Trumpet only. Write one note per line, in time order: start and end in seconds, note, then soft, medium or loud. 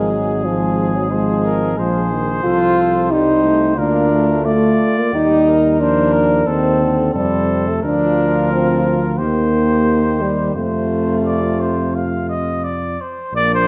0.00 1.79 G#4 medium
1.78 3.11 C5 medium
3.12 3.80 C5 medium
3.78 4.46 A#4 medium
4.45 5.53 D5 medium
5.82 6.14 C5 medium
6.13 6.48 A#4 medium
6.47 7.13 A4 medium
7.14 7.82 A4 medium
7.82 9.19 A#4 medium
9.18 10.55 C5 medium
10.56 11.17 C5 medium
11.26 11.62 D5 medium
11.61 11.97 C5 medium
11.95 12.28 F5 medium
12.29 12.65 D#5 medium
12.64 13.02 D5 medium
13.01 13.34 C5 medium
13.36 13.50 D5 loud
13.54 13.68 C5 medium